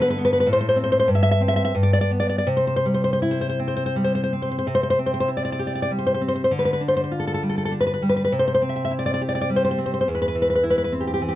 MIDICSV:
0, 0, Header, 1, 2, 480
1, 0, Start_track
1, 0, Key_signature, 0, "major"
1, 0, Tempo, 609756
1, 368, Time_signature, 3, 2, 24, 8
1, 859, Tempo, 662252
1, 1339, Tempo, 732601
1, 2779, Tempo, 699301
1, 3259, Tempo, 634921
1, 3739, Tempo, 604230
1, 6619, Tempo, 574713
1, 8658, End_track
2, 0, Start_track
2, 0, Title_t, "Nylon-string guitar"
2, 0, Program_c, 0, 24
2, 0, Note_on_c, 0, 43, 86
2, 0, Note_on_c, 0, 50, 68
2, 0, Note_on_c, 0, 59, 67
2, 0, Note_on_c, 0, 62, 71
2, 13, Note_on_c, 0, 71, 88
2, 72, Note_off_c, 0, 71, 0
2, 82, Note_on_c, 0, 71, 92
2, 133, Note_off_c, 0, 62, 0
2, 134, Note_off_c, 0, 59, 0
2, 137, Note_off_c, 0, 71, 0
2, 144, Note_on_c, 0, 59, 60
2, 195, Note_on_c, 0, 71, 85
2, 249, Note_off_c, 0, 71, 0
2, 258, Note_on_c, 0, 71, 78
2, 307, Note_off_c, 0, 71, 0
2, 317, Note_on_c, 0, 71, 77
2, 333, Note_off_c, 0, 43, 0
2, 367, Note_on_c, 0, 45, 88
2, 369, Note_off_c, 0, 50, 0
2, 372, Note_off_c, 0, 71, 0
2, 373, Note_off_c, 0, 59, 0
2, 415, Note_on_c, 0, 72, 93
2, 467, Note_off_c, 0, 72, 0
2, 477, Note_on_c, 0, 72, 89
2, 531, Note_off_c, 0, 72, 0
2, 541, Note_on_c, 0, 72, 89
2, 599, Note_on_c, 0, 60, 56
2, 606, Note_off_c, 0, 72, 0
2, 658, Note_on_c, 0, 72, 87
2, 714, Note_off_c, 0, 72, 0
2, 723, Note_on_c, 0, 72, 78
2, 774, Note_off_c, 0, 72, 0
2, 784, Note_on_c, 0, 72, 87
2, 829, Note_off_c, 0, 60, 0
2, 844, Note_off_c, 0, 45, 0
2, 849, Note_on_c, 0, 43, 79
2, 853, Note_off_c, 0, 72, 0
2, 901, Note_on_c, 0, 76, 88
2, 949, Note_off_c, 0, 76, 0
2, 957, Note_on_c, 0, 76, 97
2, 1011, Note_off_c, 0, 76, 0
2, 1020, Note_on_c, 0, 76, 91
2, 1087, Note_on_c, 0, 60, 53
2, 1088, Note_off_c, 0, 76, 0
2, 1142, Note_on_c, 0, 76, 83
2, 1191, Note_off_c, 0, 76, 0
2, 1200, Note_on_c, 0, 76, 89
2, 1252, Note_off_c, 0, 76, 0
2, 1261, Note_on_c, 0, 76, 94
2, 1310, Note_off_c, 0, 60, 0
2, 1320, Note_off_c, 0, 43, 0
2, 1331, Note_off_c, 0, 76, 0
2, 1334, Note_on_c, 0, 43, 74
2, 1389, Note_on_c, 0, 74, 79
2, 1450, Note_off_c, 0, 74, 0
2, 1457, Note_on_c, 0, 74, 82
2, 1499, Note_off_c, 0, 74, 0
2, 1507, Note_on_c, 0, 74, 88
2, 1567, Note_off_c, 0, 74, 0
2, 1573, Note_on_c, 0, 59, 52
2, 1630, Note_on_c, 0, 74, 78
2, 1685, Note_off_c, 0, 74, 0
2, 1693, Note_on_c, 0, 74, 72
2, 1743, Note_off_c, 0, 74, 0
2, 1751, Note_on_c, 0, 74, 70
2, 1788, Note_off_c, 0, 59, 0
2, 1794, Note_off_c, 0, 43, 0
2, 1806, Note_on_c, 0, 48, 71
2, 1812, Note_off_c, 0, 74, 0
2, 1872, Note_on_c, 0, 72, 73
2, 1934, Note_off_c, 0, 72, 0
2, 1941, Note_on_c, 0, 72, 70
2, 1993, Note_off_c, 0, 72, 0
2, 2001, Note_on_c, 0, 72, 77
2, 2060, Note_off_c, 0, 72, 0
2, 2061, Note_on_c, 0, 55, 57
2, 2118, Note_on_c, 0, 72, 67
2, 2174, Note_off_c, 0, 72, 0
2, 2182, Note_on_c, 0, 72, 63
2, 2232, Note_off_c, 0, 72, 0
2, 2240, Note_on_c, 0, 72, 69
2, 2298, Note_off_c, 0, 72, 0
2, 2300, Note_on_c, 0, 64, 61
2, 2359, Note_on_c, 0, 72, 73
2, 2418, Note_off_c, 0, 72, 0
2, 2426, Note_on_c, 0, 72, 76
2, 2472, Note_off_c, 0, 72, 0
2, 2479, Note_on_c, 0, 72, 75
2, 2541, Note_off_c, 0, 72, 0
2, 2545, Note_on_c, 0, 60, 49
2, 2600, Note_on_c, 0, 72, 69
2, 2649, Note_off_c, 0, 72, 0
2, 2657, Note_on_c, 0, 72, 71
2, 2711, Note_off_c, 0, 72, 0
2, 2719, Note_on_c, 0, 72, 72
2, 2776, Note_off_c, 0, 55, 0
2, 2779, Note_off_c, 0, 72, 0
2, 2784, Note_on_c, 0, 55, 54
2, 2842, Note_on_c, 0, 72, 74
2, 2903, Note_off_c, 0, 72, 0
2, 2915, Note_on_c, 0, 72, 74
2, 2966, Note_off_c, 0, 72, 0
2, 2974, Note_on_c, 0, 72, 70
2, 3026, Note_off_c, 0, 64, 0
2, 3029, Note_off_c, 0, 60, 0
2, 3031, Note_off_c, 0, 72, 0
2, 3038, Note_on_c, 0, 60, 52
2, 3102, Note_on_c, 0, 72, 67
2, 3154, Note_off_c, 0, 72, 0
2, 3165, Note_on_c, 0, 72, 61
2, 3206, Note_off_c, 0, 72, 0
2, 3214, Note_on_c, 0, 72, 67
2, 3230, Note_off_c, 0, 48, 0
2, 3262, Note_off_c, 0, 55, 0
2, 3265, Note_off_c, 0, 72, 0
2, 3266, Note_off_c, 0, 60, 0
2, 3272, Note_on_c, 0, 48, 68
2, 3332, Note_on_c, 0, 72, 79
2, 3387, Note_off_c, 0, 72, 0
2, 3396, Note_on_c, 0, 72, 75
2, 3440, Note_off_c, 0, 72, 0
2, 3449, Note_on_c, 0, 72, 81
2, 3505, Note_off_c, 0, 72, 0
2, 3515, Note_on_c, 0, 60, 48
2, 3571, Note_on_c, 0, 72, 69
2, 3617, Note_off_c, 0, 72, 0
2, 3627, Note_on_c, 0, 72, 72
2, 3668, Note_off_c, 0, 72, 0
2, 3677, Note_on_c, 0, 72, 69
2, 3735, Note_on_c, 0, 64, 50
2, 3738, Note_off_c, 0, 72, 0
2, 3806, Note_on_c, 0, 74, 65
2, 3858, Note_off_c, 0, 74, 0
2, 3868, Note_on_c, 0, 74, 77
2, 3918, Note_off_c, 0, 74, 0
2, 3928, Note_on_c, 0, 74, 79
2, 3984, Note_on_c, 0, 67, 50
2, 3989, Note_off_c, 0, 74, 0
2, 4043, Note_on_c, 0, 74, 59
2, 4101, Note_off_c, 0, 74, 0
2, 4111, Note_on_c, 0, 74, 62
2, 4157, Note_off_c, 0, 74, 0
2, 4166, Note_on_c, 0, 74, 72
2, 4231, Note_off_c, 0, 60, 0
2, 4231, Note_off_c, 0, 74, 0
2, 4234, Note_on_c, 0, 55, 47
2, 4295, Note_on_c, 0, 72, 68
2, 4349, Note_off_c, 0, 72, 0
2, 4359, Note_on_c, 0, 72, 68
2, 4412, Note_off_c, 0, 72, 0
2, 4421, Note_on_c, 0, 72, 75
2, 4472, Note_off_c, 0, 64, 0
2, 4476, Note_on_c, 0, 60, 48
2, 4477, Note_off_c, 0, 72, 0
2, 4532, Note_on_c, 0, 72, 68
2, 4579, Note_off_c, 0, 72, 0
2, 4589, Note_on_c, 0, 72, 60
2, 4649, Note_off_c, 0, 72, 0
2, 4657, Note_on_c, 0, 72, 59
2, 4684, Note_off_c, 0, 48, 0
2, 4707, Note_off_c, 0, 67, 0
2, 4709, Note_off_c, 0, 55, 0
2, 4710, Note_off_c, 0, 60, 0
2, 4712, Note_off_c, 0, 72, 0
2, 4713, Note_on_c, 0, 50, 66
2, 4775, Note_on_c, 0, 71, 74
2, 4815, Note_off_c, 0, 71, 0
2, 4825, Note_on_c, 0, 71, 68
2, 4877, Note_off_c, 0, 71, 0
2, 4886, Note_on_c, 0, 71, 70
2, 4947, Note_off_c, 0, 71, 0
2, 4948, Note_on_c, 0, 62, 50
2, 5008, Note_on_c, 0, 72, 60
2, 5064, Note_off_c, 0, 72, 0
2, 5074, Note_on_c, 0, 72, 60
2, 5121, Note_off_c, 0, 72, 0
2, 5131, Note_on_c, 0, 72, 62
2, 5191, Note_off_c, 0, 72, 0
2, 5192, Note_on_c, 0, 65, 48
2, 5256, Note_on_c, 0, 69, 55
2, 5309, Note_off_c, 0, 69, 0
2, 5318, Note_on_c, 0, 69, 66
2, 5364, Note_off_c, 0, 69, 0
2, 5374, Note_on_c, 0, 69, 69
2, 5433, Note_off_c, 0, 69, 0
2, 5441, Note_on_c, 0, 55, 49
2, 5494, Note_on_c, 0, 69, 58
2, 5550, Note_off_c, 0, 69, 0
2, 5560, Note_on_c, 0, 69, 61
2, 5611, Note_off_c, 0, 69, 0
2, 5620, Note_on_c, 0, 69, 65
2, 5661, Note_off_c, 0, 62, 0
2, 5670, Note_on_c, 0, 62, 49
2, 5676, Note_off_c, 0, 69, 0
2, 5741, Note_on_c, 0, 71, 72
2, 5780, Note_off_c, 0, 71, 0
2, 5790, Note_on_c, 0, 71, 73
2, 5836, Note_off_c, 0, 71, 0
2, 5846, Note_on_c, 0, 71, 73
2, 5904, Note_off_c, 0, 55, 0
2, 5907, Note_off_c, 0, 71, 0
2, 5910, Note_off_c, 0, 65, 0
2, 5914, Note_on_c, 0, 55, 51
2, 5970, Note_on_c, 0, 71, 68
2, 6017, Note_off_c, 0, 71, 0
2, 6026, Note_on_c, 0, 71, 58
2, 6081, Note_off_c, 0, 71, 0
2, 6091, Note_on_c, 0, 71, 63
2, 6115, Note_off_c, 0, 50, 0
2, 6144, Note_off_c, 0, 62, 0
2, 6147, Note_off_c, 0, 55, 0
2, 6147, Note_off_c, 0, 71, 0
2, 6152, Note_on_c, 0, 48, 63
2, 6208, Note_on_c, 0, 72, 76
2, 6265, Note_off_c, 0, 72, 0
2, 6274, Note_on_c, 0, 72, 70
2, 6318, Note_off_c, 0, 72, 0
2, 6328, Note_on_c, 0, 72, 74
2, 6385, Note_off_c, 0, 72, 0
2, 6387, Note_on_c, 0, 60, 47
2, 6445, Note_on_c, 0, 76, 66
2, 6488, Note_off_c, 0, 76, 0
2, 6498, Note_on_c, 0, 76, 61
2, 6558, Note_off_c, 0, 76, 0
2, 6568, Note_on_c, 0, 76, 65
2, 6618, Note_on_c, 0, 64, 53
2, 6623, Note_off_c, 0, 76, 0
2, 6684, Note_on_c, 0, 74, 68
2, 6733, Note_off_c, 0, 74, 0
2, 6743, Note_on_c, 0, 74, 75
2, 6799, Note_off_c, 0, 74, 0
2, 6809, Note_on_c, 0, 74, 82
2, 6867, Note_off_c, 0, 74, 0
2, 6872, Note_on_c, 0, 67, 49
2, 6933, Note_on_c, 0, 74, 68
2, 6976, Note_off_c, 0, 74, 0
2, 6986, Note_on_c, 0, 74, 72
2, 7029, Note_off_c, 0, 74, 0
2, 7039, Note_on_c, 0, 74, 74
2, 7102, Note_off_c, 0, 74, 0
2, 7105, Note_off_c, 0, 60, 0
2, 7108, Note_on_c, 0, 55, 49
2, 7163, Note_on_c, 0, 72, 74
2, 7223, Note_off_c, 0, 72, 0
2, 7233, Note_on_c, 0, 72, 75
2, 7276, Note_off_c, 0, 72, 0
2, 7286, Note_on_c, 0, 72, 78
2, 7342, Note_off_c, 0, 64, 0
2, 7344, Note_off_c, 0, 72, 0
2, 7348, Note_on_c, 0, 60, 46
2, 7411, Note_on_c, 0, 72, 63
2, 7465, Note_off_c, 0, 72, 0
2, 7476, Note_on_c, 0, 72, 60
2, 7526, Note_off_c, 0, 72, 0
2, 7536, Note_on_c, 0, 72, 65
2, 7550, Note_off_c, 0, 48, 0
2, 7581, Note_off_c, 0, 55, 0
2, 7582, Note_off_c, 0, 60, 0
2, 7583, Note_off_c, 0, 67, 0
2, 7587, Note_off_c, 0, 72, 0
2, 7595, Note_on_c, 0, 40, 64
2, 7651, Note_on_c, 0, 71, 77
2, 7700, Note_off_c, 0, 71, 0
2, 7710, Note_on_c, 0, 71, 75
2, 7751, Note_off_c, 0, 71, 0
2, 7761, Note_on_c, 0, 71, 80
2, 7818, Note_off_c, 0, 71, 0
2, 7821, Note_on_c, 0, 52, 47
2, 7879, Note_on_c, 0, 71, 69
2, 7936, Note_off_c, 0, 71, 0
2, 7945, Note_on_c, 0, 71, 64
2, 7982, Note_off_c, 0, 71, 0
2, 7992, Note_on_c, 0, 71, 70
2, 8052, Note_off_c, 0, 71, 0
2, 8059, Note_on_c, 0, 64, 54
2, 8117, Note_on_c, 0, 71, 72
2, 8169, Note_off_c, 0, 71, 0
2, 8179, Note_on_c, 0, 71, 78
2, 8222, Note_off_c, 0, 71, 0
2, 8232, Note_on_c, 0, 71, 81
2, 8293, Note_off_c, 0, 71, 0
2, 8300, Note_on_c, 0, 60, 52
2, 8368, Note_on_c, 0, 67, 57
2, 8415, Note_off_c, 0, 67, 0
2, 8425, Note_on_c, 0, 67, 55
2, 8468, Note_off_c, 0, 67, 0
2, 8478, Note_on_c, 0, 67, 66
2, 8534, Note_off_c, 0, 52, 0
2, 8538, Note_off_c, 0, 67, 0
2, 8544, Note_on_c, 0, 52, 53
2, 8602, Note_on_c, 0, 67, 59
2, 8658, Note_off_c, 0, 40, 0
2, 8658, Note_off_c, 0, 52, 0
2, 8658, Note_off_c, 0, 60, 0
2, 8658, Note_off_c, 0, 64, 0
2, 8658, Note_off_c, 0, 67, 0
2, 8658, End_track
0, 0, End_of_file